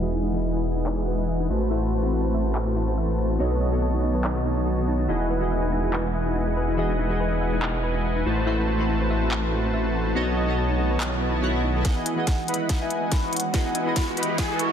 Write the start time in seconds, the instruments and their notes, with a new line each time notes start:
Already playing: detuned saw bass E1, ambient pad E3 G#3 F#4 D#5, supersaw synth E4 B4 D#5 F#5 G#5, synth keys F#4 G#4 D#5
0.00 synth keys E3 E4 F#4 G#4 D#5, synth arpeggio sound E5
0.13 synth arpeggio sound D#4
0.23 synth arpeggio sound D#4
0.32 synth keys E3 E4 F#4 G#4 D#5, synth arpeggio sound G#4
0.44 synth arpeggio sound B4
0.55 synth arpeggio sound E4
0.65 synth arpeggio sound E5
0.77 synth arpeggio sound D#4
0.86 synth arpeggio sound D#4, clap
0.98 synth arpeggio sound G#4
1.08 synth arpeggio sound B4
1.19 synth arpeggio sound E4
1.29 synth arpeggio sound E5
1.40 synth arpeggio sound D#4
1.50 detuned saw bass A1, ambient pad E3 A3 C4, supersaw synth A3 F#4 B4 C5 A5, synth arpeggio sound E4
1.61 synth arpeggio sound C5
1.70 synth keys A3 E4 F#4 B4 C5, synth arpeggio sound E5
1.82 synth arpeggio sound F#4
1.92 synth arpeggio sound A5
2.01 synth keys A3 E4 F#4 B5, synth arpeggio sound E4
2.05 synth keys C4
2.13 synth arpeggio sound E4
2.24 synth arpeggio sound C5
2.34 synth arpeggio sound E5
2.46 synth arpeggio sound F#4
2.55 synth arpeggio sound A5, clap
2.67 synth arpeggio sound E4
2.76 synth arpeggio sound E4
2.88 synth arpeggio sound C5
2.98 synth arpeggio sound E5
3.09 synth arpeggio sound F#4
3.19 synth arpeggio sound A5
3.30 synth arpeggio sound E4
3.39 detuned saw bass B1, synth keys B3 F#4 A4 C#5 D#5, supersaw synth B3 F#4 C#5 D#5 A5, synth arpeggio sound D#4
3.51 synth arpeggio sound B4
3.61 synth arpeggio sound D#5
3.70 synth keys B3 F#4 A4 C#5, synth arpeggio sound F#4
3.74 synth keys D#5
3.82 synth arpeggio sound A5
3.93 synth arpeggio sound D#4
4.03 synth arpeggio sound D#4
4.15 synth arpeggio sound B4
4.24 clap
4.36 synth arpeggio sound F#4
4.46 synth arpeggio sound D#4
4.57 synth arpeggio sound D#4
4.67 synth arpeggio sound F#4
4.78 synth arpeggio sound F#4
4.88 synth arpeggio sound D#4
4.99 synth arpeggio sound D#4
5.08 detuned saw bass E1, synth keys E3 E4 F#4 G#4 D#5, ambient pad E3 G#3 F#4 D#5, synth arpeggio sound D#4, supersaw synth E4 B4 D#5 F#5 G#5
5.20 synth arpeggio sound G#4
5.30 synth arpeggio sound B4
5.39 synth keys E3 E4 F#4 G#4 D#5, synth arpeggio sound E4
5.51 synth arpeggio sound E5
5.63 synth arpeggio sound D#4
5.72 synth arpeggio sound D#4
5.84 synth arpeggio sound G#4
5.93 synth arpeggio sound B4, clap
6.05 synth arpeggio sound E4
6.15 synth arpeggio sound E5
6.26 synth arpeggio sound D#4
6.36 synth arpeggio sound D#4
6.47 synth arpeggio sound G#4
6.57 synth arpeggio sound B4
6.68 synth arpeggio sound E4
6.77 synth keys E3 E4 F#4 G#4 D#5, synth arpeggio sound E5
6.89 synth arpeggio sound D#4
6.99 synth arpeggio sound D#4
7.08 synth keys E3 E4 F#4 G#4, synth arpeggio sound G#4
7.12 synth keys D#5
7.20 synth arpeggio sound B4
7.32 synth arpeggio sound E4
7.41 synth arpeggio sound E5
7.53 synth arpeggio sound D#4
7.62 synth arpeggio sound D#4, clap
7.74 synth arpeggio sound G#4
7.83 synth arpeggio sound B4
7.95 synth arpeggio sound E4
8.05 synth arpeggio sound E5
8.16 synth arpeggio sound D#4
8.26 detuned saw bass A1, ambient pad E3 A3 C4 F#4, supersaw synth A3 F#4 B4 C5 A5, synth arpeggio sound E4
8.37 synth arpeggio sound C5
8.46 synth keys A3 E4 F#4 B4 C5, synth arpeggio sound E5
8.58 synth arpeggio sound F#4
8.68 synth arpeggio sound A5
8.77 synth keys A3 C4 E4 F#4 B5, synth arpeggio sound E4
8.89 synth arpeggio sound E4
9.01 synth arpeggio sound C5
9.10 synth arpeggio sound E5
9.22 synth arpeggio sound F#4
9.31 synth arpeggio sound A5, clap
9.43 synth arpeggio sound E4
9.52 synth arpeggio sound E4
9.64 synth arpeggio sound C5
9.74 synth arpeggio sound E5
9.85 synth arpeggio sound F#4
9.95 synth arpeggio sound A5
10.06 synth arpeggio sound E4
10.15 detuned saw bass B1, synth keys B3 F#4 A4 C#5 D#5, supersaw synth B3 F#4 C#5 D#5 A5, synth arpeggio sound D#4
10.27 synth arpeggio sound B4
10.37 synth arpeggio sound D#5
10.46 synth keys B3 F#4 A4 C#5, synth arpeggio sound F#4
10.50 synth keys D#5
10.58 synth arpeggio sound A5
10.70 synth arpeggio sound D#4
10.79 synth arpeggio sound D#4
10.91 synth arpeggio sound B4
11.00 clap, swell
11.12 synth arpeggio sound F#4
11.22 synth arpeggio sound B4
11.33 synth arpeggio sound A5
11.42 synth keys B3 F#4 A4 C#5 F#5, synth arpeggio sound D#4
11.54 synth arpeggio sound F#4
11.64 synth arpeggio sound D#4
11.75 synth arpeggio sound F#4
11.84 synth keys E3 B3 F#4 G#4 D#5, ambient pad E3 G#3 F#4 D#5, supersaw synth B4 F#5, kick, snare, closed hi-hat, riser
12.06 closed hi-hat
12.15 synth keys E3 B3 F#4 G#4, supersaw synth E4 B4 D#5 F#5 G#5, vibraphone F#5
12.19 synth keys D#5
12.27 kick, snare, closed hi-hat
12.48 supersaw synth E4 B4 D#5 F#5 B5, closed hi-hat
12.54 closed hi-hat
12.69 kick, snare, closed hi-hat
12.81 supersaw synth E4 B4 D#5 F#5 G#5, vibraphone E5
12.90 vibraphone G#5, closed hi-hat
13.12 vibraphone B5, kick, snare, closed hi-hat
13.23 supersaw synth E4 B4 D#5 F#5 C#6
13.33 vibraphone F#5, closed hi-hat
13.36 closed hi-hat
13.40 closed hi-hat
13.53 synth keys E3 B3 F#4 G#4 D#5, supersaw synth E4 B4 D#5 F#5 G#5, kick, snare, closed hi-hat
13.75 closed hi-hat
13.84 synth keys E3 B3 F#4 G#4, supersaw synth E4 B4 D#5 F#5 G#5, vibraphone B5
13.88 synth keys D#5
13.96 kick, snare, closed hi-hat
14.17 supersaw synth E4 B4 D#5 F#5 B5, closed hi-hat
14.23 closed hi-hat
14.38 vibraphone G#5, kick, snare, closed hi-hat
14.50 supersaw synth E4 B4 D#5 F#5 G#5
14.59 vibraphone C#6, closed hi-hat